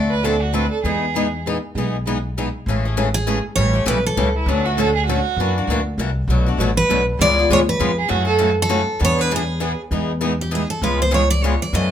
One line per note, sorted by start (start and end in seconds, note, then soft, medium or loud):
0.00 0.66 D2 medium
0.00 0.13 D3 medium
0.00 0.13 A3 medium
0.00 0.14 C4 medium
0.00 0.14 F#4 medium
0.00 0.14 A4 medium
0.00 0.68 D5 medium
0.10 0.26 B4 medium
0.24 0.35 D3 medium
0.24 0.35 A3 medium
0.24 0.35 C4 medium
0.24 0.35 F#4 medium
0.24 0.43 A4 medium
0.24 0.36 A4 medium
0.42 0.55 F#4 medium
0.53 0.65 D3 medium
0.53 0.65 A3 medium
0.53 0.65 C4 medium
0.53 0.65 F#4 medium
0.53 0.65 A4 medium
0.53 0.71 B4 medium
0.71 0.83 A4 medium
0.84 1.57 E2 medium
0.84 1.04 E3 medium
0.84 1.04 G#3 medium
0.84 1.04 B3 medium
0.84 1.04 D#4 medium
0.84 1.41 G#4 medium
0.84 1.05 G#4 medium
1.15 1.26 E3 medium
1.15 1.26 G#3 medium
1.15 1.26 B3 medium
1.15 1.26 D#4 medium
1.15 1.26 G#4 medium
1.46 1.57 E3 medium
1.46 1.56 G#3 medium
1.46 1.57 B3 medium
1.46 1.57 D#4 medium
1.46 1.57 G#4 medium
1.75 2.48 B1 medium
1.75 1.96 E3 medium
1.75 1.95 G#3 medium
1.75 1.96 B3 medium
1.75 1.96 D#4 medium
1.75 1.96 G#4 medium
2.06 2.17 E3 medium
2.06 2.16 G#3 medium
2.06 2.17 B3 medium
2.06 2.17 D#4 medium
2.06 2.17 G#4 medium
2.38 2.47 E3 medium
2.38 2.47 G#3 medium
2.38 2.47 B3 medium
2.38 2.48 D#4 medium
2.38 2.48 G#4 medium
2.66 3.39 A1 medium
2.66 2.84 C#3 medium
2.66 2.84 E3 medium
2.66 2.86 G#3 medium
2.66 2.85 A3 medium
2.66 2.85 C#4 medium
2.66 2.86 E4 medium
2.66 2.84 G#4 medium
2.66 2.87 A4 medium
2.85 2.96 A3 soft
2.85 2.96 C#4 soft
2.85 2.97 G#4 medium
2.97 3.07 C#3 medium
2.97 3.07 E3 medium
2.97 3.07 G#3 medium
2.97 3.07 A3 medium
2.97 3.08 C#4 medium
2.97 3.07 E4 medium
2.97 3.08 G#4 medium
2.97 3.08 A4 medium
3.14 3.42 G#4 medium
3.26 3.37 C#3 medium
3.26 3.37 E3 medium
3.26 3.37 G#3 medium
3.26 3.38 A3 medium
3.26 3.37 C#4 medium
3.26 3.37 E4 medium
3.26 3.38 G#4 medium
3.26 3.38 A4 medium
3.56 3.81 A1 medium
3.56 3.74 C#3 medium
3.56 3.74 E3 medium
3.56 3.77 G3 medium
3.56 3.74 A3 medium
3.56 3.74 C#4 medium
3.56 3.72 G4 medium
3.56 3.84 C#5 medium
3.60 3.78 E4 medium
3.60 3.78 A4 medium
3.73 3.85 A3 soft
3.73 3.85 C#4 soft
3.73 3.85 G4 soft
3.86 4.12 B1 medium
3.86 3.97 C#3 medium
3.86 3.97 E3 medium
3.86 3.98 G3 medium
3.86 3.97 A3 medium
3.86 3.97 C#4 loud
3.86 3.99 E4 medium
3.86 3.97 G4 medium
3.86 3.98 A4 medium
3.86 4.04 B4 medium
4.06 4.34 A4 medium
4.17 4.43 C#2 medium
4.17 4.28 C#3 medium
4.17 4.28 E3 medium
4.17 4.28 G3 medium
4.17 4.28 A3 medium
4.17 4.28 C#4 medium
4.17 4.28 E4 medium
4.17 4.28 G4 medium
4.17 4.28 A4 medium
4.36 4.50 E4 medium
4.46 5.19 D2 medium
4.46 4.65 D3 medium
4.46 4.65 F#3 medium
4.46 4.65 A3 medium
4.46 4.65 C#4 medium
4.46 4.67 D4 medium
4.46 4.64 F#4 medium
4.46 4.68 A4 medium
4.65 4.78 A3 soft
4.65 4.77 C#4 soft
4.65 4.77 F#4 medium
4.78 4.88 D3 medium
4.78 4.88 F#3 medium
4.78 4.89 A3 medium
4.78 4.89 C#4 medium
4.78 4.89 F#4 medium
4.78 4.88 A4 medium
4.78 4.94 A4 medium
4.95 5.06 G#4 medium
5.06 5.19 D3 medium
5.06 5.19 F#3 medium
5.06 5.19 A3 medium
5.06 5.20 C#4 medium
5.06 5.63 F#4 medium
5.06 5.19 F#4 medium
5.06 5.19 A4 medium
5.37 5.61 F#2 medium
5.37 5.56 E3 medium
5.37 5.57 F#3 medium
5.37 5.56 A#3 medium
5.37 5.56 D4 medium
5.37 5.58 E4 medium
5.37 5.58 A#4 medium
5.41 5.56 F#4 medium
5.58 5.69 A#3 soft
5.58 5.69 D4 medium
5.58 5.69 F#4 medium
5.67 5.93 D2 medium
5.67 5.80 E3 medium
5.67 5.78 F#3 medium
5.67 5.80 A#3 medium
5.67 5.80 D4 medium
5.67 5.79 E4 medium
5.67 5.79 A#4 medium
5.72 5.81 F#4 medium
5.98 6.24 C2 medium
5.98 6.10 E3 medium
5.98 6.09 F#3 medium
5.98 6.09 A#3 medium
5.98 6.09 D4 medium
5.98 6.09 E4 medium
5.98 6.10 F#4 medium
5.98 6.09 A#4 medium
6.28 6.52 B1 medium
6.28 6.46 B2 medium
6.28 6.46 F#3 medium
6.28 6.46 A3 medium
6.28 6.46 D4 medium
6.28 6.45 F#4 medium
6.28 6.48 B4 medium
6.46 6.59 A3 soft
6.46 6.59 D4 medium
6.46 6.58 F#4 medium
6.58 6.84 A1 medium
6.58 6.70 B2 medium
6.58 6.70 F#3 medium
6.58 6.70 A3 medium
6.58 6.70 D4 medium
6.58 6.70 F#4 loud
6.58 6.69 B4 medium
6.77 7.05 B4 medium
6.89 7.15 B1 medium
6.89 7.00 B2 medium
6.89 7.00 F#3 medium
6.89 7.00 A3 medium
6.89 7.01 D4 medium
6.89 7.00 F#4 medium
6.89 7.00 B4 medium
7.19 7.43 C#2 medium
7.19 7.37 C#3 medium
7.19 7.37 G#3 medium
7.19 7.37 B3 medium
7.19 7.37 F4 medium
7.19 7.37 G#4 medium
7.19 7.48 D5 loud
7.39 7.50 B3 soft
7.39 7.50 F4 soft
7.39 7.50 G#4 medium
7.50 7.75 D2 medium
7.50 7.61 C#3 medium
7.50 7.60 G#3 medium
7.50 7.61 B3 medium
7.50 7.61 F4 medium
7.50 7.61 G#4 medium
7.50 7.58 C#5 medium
7.69 7.96 B4 medium
7.80 8.05 F2 medium
7.80 7.90 C#3 medium
7.80 7.90 G#3 medium
7.80 7.91 B3 medium
7.80 7.91 F4 medium
7.80 7.91 G#4 medium
7.98 8.10 G#4 medium
8.09 8.83 F#2 medium
8.09 8.26 C#3 medium
8.09 8.26 E3 medium
8.09 8.28 F#3 medium
8.09 8.26 A3 medium
8.09 8.24 C#4 medium
8.09 8.29 E4 medium
8.09 8.25 F#4 medium
8.09 8.24 F#4 medium
8.09 8.29 C#5 medium
8.25 8.37 A3 soft
8.25 8.38 C#4 soft
8.25 8.38 F#4 medium
8.25 8.46 A4 medium
8.38 8.50 C#3 medium
8.38 8.50 E3 medium
8.38 8.51 F#3 medium
8.38 8.50 A3 medium
8.38 8.50 C#4 medium
8.38 8.51 E4 medium
8.38 8.50 F#4 medium
8.38 8.51 C#5 loud
8.62 9.00 A4 medium
8.69 8.80 C#3 medium
8.69 8.80 E3 medium
8.69 8.81 F#3 medium
8.69 8.80 A3 medium
8.69 8.81 C#4 medium
8.69 8.81 E4 medium
8.69 8.81 F#4 medium
8.69 8.81 C#5 medium
8.99 9.73 E2 medium
8.99 9.17 E3 medium
8.99 9.17 B3 medium
8.99 9.17 D4 medium
8.99 9.17 G#4 medium
8.99 9.21 B4 medium
9.05 9.21 C#5 loud
9.18 9.30 B3 soft
9.18 9.31 D4 soft
9.18 9.30 G#4 medium
9.18 9.32 B4 medium
9.31 9.42 E3 medium
9.31 9.42 B3 medium
9.31 9.42 D4 medium
9.31 9.42 G#4 medium
9.31 9.42 B4 medium
9.36 9.81 G#4 medium
9.60 9.71 E3 medium
9.60 9.71 B3 medium
9.60 9.71 D4 medium
9.60 9.72 G#4 medium
9.60 9.72 B4 medium
9.91 10.64 E2 medium
9.91 10.11 E3 medium
9.91 10.11 G#3 medium
9.91 10.11 B3 medium
9.91 10.11 D#4 medium
9.91 10.11 G#4 medium
10.21 10.32 E3 medium
10.21 10.32 G#3 medium
10.21 10.32 B3 medium
10.21 10.32 D#4 medium
10.21 10.32 G#4 medium
10.41 10.53 G4 medium
10.51 10.62 E3 medium
10.51 10.63 G#3 medium
10.51 10.62 B3 medium
10.51 10.62 D#4 medium
10.51 10.62 G#4 medium
10.51 10.70 G#4 medium
10.70 10.82 A4 medium
10.82 11.55 C#2 medium
10.82 11.02 C#3 medium
10.82 11.02 G#3 medium
10.82 11.02 B3 medium
10.82 11.02 F4 medium
10.82 11.02 G#4 medium
10.82 11.00 B4 medium
11.02 11.13 C5 medium
11.11 11.22 C#3 medium
11.11 11.22 G#3 medium
11.11 11.23 B3 medium
11.11 11.23 F4 medium
11.11 11.23 G#4 medium
11.11 11.30 C#5 medium
11.30 11.43 D5 medium
11.43 11.54 C#3 medium
11.43 11.54 G#3 medium
11.43 11.54 B3 medium
11.43 11.54 F4 medium
11.43 11.54 G#4 medium
11.43 11.60 C#5 medium
11.62 11.74 D5 medium
11.73 11.91 F#2 medium
11.73 11.91 C#3 medium
11.73 11.91 E3 medium
11.73 11.91 F#3 medium
11.73 11.91 A3 medium
11.73 11.91 C#4 medium
11.73 11.91 E4 medium
11.73 11.91 F#4 medium
11.73 11.91 A4 medium
11.73 11.91 D#5 medium